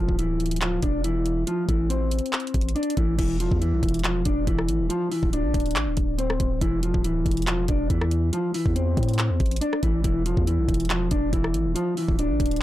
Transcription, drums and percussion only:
0.09 kick
0.19 closed hi-hat
0.40 closed hi-hat
0.46 closed hi-hat
0.51 closed hi-hat
0.56 closed hi-hat
0.62 clap, closed hi-hat
0.82 kick, closed hi-hat
1.04 closed hi-hat
1.26 closed hi-hat
1.47 closed hi-hat
1.69 kick, closed hi-hat
1.90 closed hi-hat
2.11 closed hi-hat
2.19 closed hi-hat
2.26 closed hi-hat
2.33 clap, closed hi-hat
2.40 closed hi-hat
2.47 closed hi-hat
2.54 kick, closed hi-hat
2.61 closed hi-hat
2.69 closed hi-hat
2.76 closed hi-hat
2.83 closed hi-hat
2.90 closed hi-hat
2.97 kick, closed hi-hat
3.19 kick, closed hi-hat, crash
3.40 closed hi-hat
3.51 kick
3.62 closed hi-hat
3.83 kick, closed hi-hat
3.89 closed hi-hat
3.94 closed hi-hat
3.99 closed hi-hat
4.04 clap, closed hi-hat
4.25 kick, closed hi-hat
4.47 kick, closed hi-hat
4.59 cross-stick
4.69 closed hi-hat
4.90 closed hi-hat
5.12 open hi-hat
5.23 kick
5.33 closed hi-hat
5.54 kick, closed hi-hat
5.60 closed hi-hat
5.66 closed hi-hat
5.71 closed hi-hat
5.76 clap, closed hi-hat
5.97 kick, closed hi-hat
6.19 closed hi-hat
6.30 cross-stick
6.40 kick, closed hi-hat
6.61 kick, closed hi-hat
6.83 closed hi-hat
6.94 kick
7.04 closed hi-hat
7.26 kick, closed hi-hat
7.31 closed hi-hat
7.37 closed hi-hat
7.42 closed hi-hat
7.47 clap, closed hi-hat
7.68 kick, closed hi-hat
7.90 kick, closed hi-hat
8.01 cross-stick
8.11 closed hi-hat
8.33 closed hi-hat
8.54 open hi-hat
8.66 kick
8.76 closed hi-hat
8.97 kick, closed hi-hat
9.03 closed hi-hat
9.09 closed hi-hat
9.14 closed hi-hat
9.19 clap, closed hi-hat
9.40 kick, closed hi-hat
9.46 closed hi-hat
9.51 closed hi-hat
9.56 closed hi-hat
9.61 closed hi-hat
9.73 cross-stick
9.83 kick, closed hi-hat
10.04 kick, closed hi-hat
10.26 closed hi-hat
10.37 kick
10.47 closed hi-hat
10.69 kick, closed hi-hat
10.74 closed hi-hat
10.80 closed hi-hat
10.85 closed hi-hat
10.90 clap, closed hi-hat
11.11 kick, closed hi-hat
11.33 kick, closed hi-hat
11.44 cross-stick
11.54 closed hi-hat
11.76 closed hi-hat
11.97 open hi-hat
12.09 kick
12.19 closed hi-hat
12.40 kick, closed hi-hat
12.46 closed hi-hat
12.51 closed hi-hat
12.56 closed hi-hat

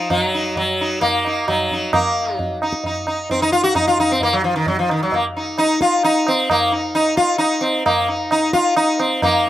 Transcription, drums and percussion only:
0.10 tabla na, tabla ge
0.56 tabla tin, tabla ge
1.02 tabla tin, tabla ge
1.25 tabla na
1.48 tabla na, tabla ge
1.71 tabla ge
1.93 tabla na, tabla ge
2.39 tabla tin, tabla ge
2.62 tabla na
2.73 tabla ke
2.84 tabla tin, tabla ge
3.07 tabla na
3.30 tabla tin, tabla ge
3.75 tabla na, tabla ge
3.98 tabla ge
4.20 tabla tin, tabla ge
4.66 tabla tin, tabla ge
4.89 tabla na
5.12 tabla tin, tabla ge
5.58 tabla na
5.81 tabla ke
6.03 tabla na
6.27 tabla na
6.50 tabla na, tabla ge
6.95 tabla na
7.18 tabla ke
7.41 tabla na
7.63 tabla na
7.86 tabla na, tabla ge
8.31 tabla na
8.53 tabla ke
8.76 tabla na
9.00 tabla na
9.22 tabla na, tabla ge

